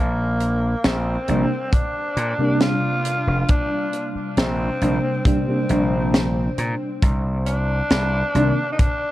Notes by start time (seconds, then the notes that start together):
Already playing: A#1 A#3
0.40 closed hi-hat
0.84 A#1 C4, snare, closed hi-hat
1.28 A#1 C3 G3 A#3 D4, closed hi-hat
1.73 D4, kick, closed hi-hat
2.17 A#2, closed hi-hat
2.38 C3 G3 A#3 D4
2.60 F4, snare, closed hi-hat
3.05 closed hi-hat
3.27 F1
3.48 D4, kick, closed hi-hat
3.93 closed hi-hat
4.16 muted slap bass stroke
4.37 A#1 C4, snare, closed hi-hat
4.81 A#1 C3 G3 A#3 D4, closed hi-hat
5.25 C3 G3 A#3 C4 D4, kick, closed hi-hat
5.48 C3 G3 A#3 D4
5.69 A#1 C3 G3 A#3 D4, closed hi-hat
6.14 snare, closed hi-hat
6.58 A#2, closed hi-hat
7.02 C2, kick, closed hi-hat
7.46 D4, closed hi-hat
7.90 C2, snare, closed hi-hat
8.34 C2 C3 D#3 A#3 D4, closed hi-hat
8.72 D#4
8.79 D4, kick, closed hi-hat